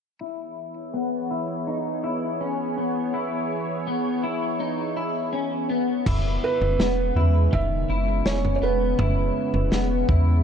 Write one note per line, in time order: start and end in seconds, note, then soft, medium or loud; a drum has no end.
0.21 6.02 E3 medium
0.21 6.02 B3 medium
0.21 0.94 E4 medium
0.21 6.02 G#4 medium
0.21 6.02 C#5 medium
0.94 1.30 B3 medium
1.31 1.67 E4 medium
1.67 2.04 D#4 medium
2.04 2.40 E4 medium
2.41 2.77 C#4 medium
2.78 3.14 B3 medium
3.14 3.87 E4 medium
3.87 4.23 B3 medium
4.24 4.60 E4 medium
4.60 4.96 D#4 medium
4.97 5.33 E4 medium
5.33 5.69 C#4 medium
5.70 6.06 B3 medium
6.06 6.38 E1 medium
6.06 10.43 C#3 medium
6.06 10.43 G#3 medium
6.06 10.43 B3 medium
6.06 10.43 C#4 medium
6.06 6.79 E4 medium
6.06 kick medium
6.06 floor tom medium
6.06 crash medium
6.44 7.56 B4 medium
6.61 6.77 E1 medium
6.61 floor tom medium
6.79 7.11 E1 medium
6.79 7.16 B3 medium
6.79 snare medium
7.15 7.48 E2 medium
7.15 7.53 E4 medium
7.15 floor tom soft
7.52 7.85 E1 medium
7.52 7.89 D#3 medium
7.52 8.28 E5 medium
7.52 kick medium
7.52 floor tom medium
7.89 8.21 F#1 medium
7.89 8.26 E4 medium
8.26 8.58 E1 medium
8.26 8.61 C#4 medium
8.26 8.54 C#5 medium
8.26 snare medium
8.45 floor tom medium
8.56 8.62 C#5 medium
8.62 8.94 E1 medium
8.62 8.99 B3 medium
8.62 10.05 B4 medium
8.99 9.31 E1 medium
8.99 9.72 E4 medium
8.99 floor tom medium
9.53 9.70 E1 medium
9.53 floor tom medium
9.71 10.04 E1 loud
9.71 10.09 B3 medium
9.71 snare medium
10.09 10.41 E2 medium
10.09 10.43 E4 medium
10.09 kick medium
10.09 floor tom soft